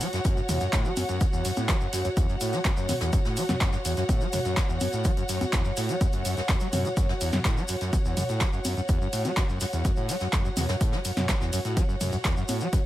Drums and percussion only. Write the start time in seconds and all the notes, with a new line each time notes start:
0.01 closed hi-hat, open hi-hat, ride, shaker
0.13 snare, closed hi-hat, shaker
0.24 kick, closed hi-hat, high conga, shaker
0.37 shaker
0.49 closed hi-hat, mid tom, open hi-hat, ride, shaker
0.60 closed hi-hat, shaker
0.73 kick, snare, clap, closed hi-hat, shaker
0.85 shaker
0.96 closed hi-hat, open hi-hat, ride, high conga, shaker
1.09 closed hi-hat, shaker
1.20 kick, closed hi-hat, shaker
1.33 shaker
1.45 closed hi-hat, open hi-hat, ride, shaker
1.56 closed hi-hat, high conga, shaker
1.68 kick, snare, clap, closed hi-hat, shaker
1.81 shaker
1.93 snare, closed hi-hat, open hi-hat, ride, shaker
2.05 closed hi-hat, shaker
2.17 kick, closed hi-hat, high conga, shaker
2.29 closed hi-hat, shaker
2.41 closed hi-hat, open hi-hat, ride, shaker
2.53 snare, closed hi-hat, shaker
2.64 kick, snare, clap, closed hi-hat, shaker
2.77 shaker
2.89 snare, closed hi-hat, mid tom, open hi-hat, ride, high conga, shaker
3.01 snare, closed hi-hat, shaker
3.13 kick, closed hi-hat, shaker
3.25 snare, shaker
3.37 closed hi-hat, open hi-hat, ride, shaker
3.49 snare, closed hi-hat, mid tom, high conga, shaker
3.61 kick, snare, clap, closed hi-hat, shaker
3.72 snare, shaker
3.85 closed hi-hat, open hi-hat, ride, shaker
3.97 snare, closed hi-hat, shaker
4.08 kick, closed hi-hat, high conga, shaker
4.21 shaker
4.33 closed hi-hat, mid tom, open hi-hat, ride, shaker
4.45 closed hi-hat, shaker
4.56 kick, snare, clap, closed hi-hat, shaker
4.69 shaker
4.80 closed hi-hat, open hi-hat, ride, high conga, shaker
4.93 closed hi-hat, shaker
5.04 kick, closed hi-hat, shaker
5.17 closed hi-hat, shaker
5.29 closed hi-hat, open hi-hat, ride, shaker
5.41 closed hi-hat, high conga, shaker
5.52 kick, snare, clap, closed hi-hat, shaker
5.64 shaker
5.77 snare, closed hi-hat, open hi-hat, ride, shaker
5.89 closed hi-hat, shaker
6.01 kick, closed hi-hat, high conga, shaker
6.13 closed hi-hat, shaker
6.25 closed hi-hat, open hi-hat, ride, shaker
6.37 snare, closed hi-hat, shaker
6.48 kick, snare, clap, closed hi-hat, shaker
6.60 closed hi-hat, shaker
6.73 closed hi-hat, mid tom, open hi-hat, ride, high conga, shaker
6.85 closed hi-hat, shaker
6.97 kick, closed hi-hat, shaker
7.09 snare, shaker
7.20 closed hi-hat, open hi-hat, ride, shaker
7.32 snare, closed hi-hat, mid tom, high conga, shaker
7.45 kick, snare, clap, closed hi-hat, shaker
7.57 snare, shaker
7.68 closed hi-hat, open hi-hat, ride, shaker
7.81 snare, closed hi-hat, shaker
7.93 kick, closed hi-hat, high conga, shaker
8.05 shaker
8.17 closed hi-hat, mid tom, open hi-hat, ride, shaker
8.29 closed hi-hat, shaker
8.40 kick, snare, clap, closed hi-hat, shaker
8.53 shaker
8.65 closed hi-hat, open hi-hat, ride, high conga, shaker
8.77 closed hi-hat, shaker
8.88 kick, closed hi-hat, shaker
9.01 shaker
9.13 closed hi-hat, open hi-hat, ride, shaker
9.25 closed hi-hat, high conga, shaker
9.37 kick, snare, clap, closed hi-hat, shaker
9.49 shaker
9.61 snare, closed hi-hat, open hi-hat, ride, shaker
9.73 closed hi-hat, shaker
9.85 kick, closed hi-hat, high conga, shaker
9.96 closed hi-hat, shaker
10.09 closed hi-hat, open hi-hat, ride, shaker
10.20 snare, closed hi-hat, shaker
10.32 kick, snare, clap, closed hi-hat, shaker
10.45 shaker
10.57 snare, closed hi-hat, mid tom, open hi-hat, ride, high conga, shaker
10.69 snare, closed hi-hat, shaker
10.81 kick, closed hi-hat, shaker
10.92 snare, shaker
11.05 closed hi-hat, open hi-hat, ride, shaker
11.17 snare, closed hi-hat, mid tom, high conga, shaker
11.29 kick, snare, clap, closed hi-hat, shaker
11.41 snare, shaker
11.53 closed hi-hat, open hi-hat, ride, shaker
11.65 snare, closed hi-hat, shaker
11.77 kick, closed hi-hat, high conga, shaker
11.89 shaker
12.01 closed hi-hat, mid tom, open hi-hat, ride, shaker
12.12 closed hi-hat, shaker
12.24 kick, snare, clap, closed hi-hat, shaker
12.37 shaker
12.48 closed hi-hat, open hi-hat, ride, high conga, shaker
12.61 closed hi-hat, shaker
12.73 kick, closed hi-hat, shaker